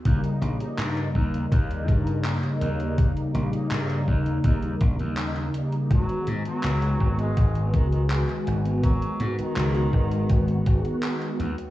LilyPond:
<<
  \new Staff \with { instrumentName = "Ambient pad" } { \time 4/4 \key dis \minor \tempo 4 = 82 << { r1 | r1 | gis''1 | fis''2.~ fis''8 g''8 | } \\ { r1 | r1 | <fis' b'>1~ | <fis' b'>2.~ <fis' b'>8 <dis' cis''>8 | } >> }
  \new Staff \with { instrumentName = "Analog polysynth" } { \time 4/4 \key dis \minor <cis g ais dis'>8. <cis g ais dis'>2~ <cis g ais dis'>8. <cis g ais dis'>8 | <cis g ais dis'>8. <cis g ais dis'>16 r2. | <dis gis b fis'>8. <dis gis b fis'>2~ <dis gis b fis'>8. <dis gis b fis'>8 | <dis gis b fis'>8. <dis gis b fis'>16 r2. | }
  \new Staff \with { instrumentName = "Tenor saxophone" } { \clef bass \time 4/4 \key dis \minor r1 | r1 | fis8 r16 fis4 gis8 r16 dis16 dis16 r4 | fis8 r16 dis4. r4. r16 | }
  \new Staff \with { instrumentName = "Slap bass" } { \clef bass \time 4/4 \key dis \minor dis,16 r16 ais,,16 r16 g,8 dis,8 dis,8 g,8. r16 dis,8~ | dis,16 r16 ais,,16 r16 g,8 dis,8 dis,8 ais,,16 dis,8. r8 | gis,,16 r16 gis,16 r16 cis,8 gis,,8 gis,,8 cis,8. r16 gis,,8~ | gis,,16 r16 gis,16 r16 cis,8 gis,,8 gis,,8 gis,,16 r8. dis,16 r16 | }
  \new DrumStaff \with { instrumentName = "Drums" } \drummode { \time 4/4 <hh bd>16 hh16 hh16 hh16 <hc hh>16 hh16 bd16 hh16 <hh bd>16 hh16 <hh bd>16 hh16 <hc hh>16 hh16 hh16 hh16 | <hh bd>16 hh16 hh16 hh16 <hc hh>16 hh16 bd16 hh16 <hh bd>16 hh16 <hh bd>16 hh16 <hc hh>16 hh16 hh16 hh16 | <hh bd>16 hh16 hh16 hh16 <hc hh>16 hh16 bd16 hh16 <hh bd>16 hh16 <hh bd>16 hh16 <hc hh>16 hh16 hh16 hh16 | <hh bd>16 hh16 hh16 hh16 <hc hh>16 hh16 bd16 hh16 <hh bd>16 hh16 <hh bd>16 hh16 <hc hh>16 hh16 hh16 hh16 | }
>>